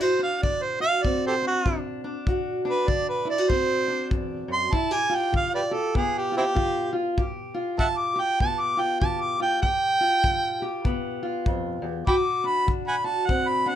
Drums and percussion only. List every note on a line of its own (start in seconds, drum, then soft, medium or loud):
0.43 kick medium
1.05 kick medium
1.66 kick medium
2.27 kick medium
2.88 kick medium
3.50 kick medium
4.11 kick medium
4.73 kick medium
5.34 kick medium
5.95 kick medium
6.57 kick medium
7.18 kick medium
7.79 kick medium
8.40 kick medium
9.02 kick medium
9.63 kick medium
10.24 kick medium
10.85 kick medium
11.46 kick medium
12.07 kick medium
12.68 kick medium
13.29 kick medium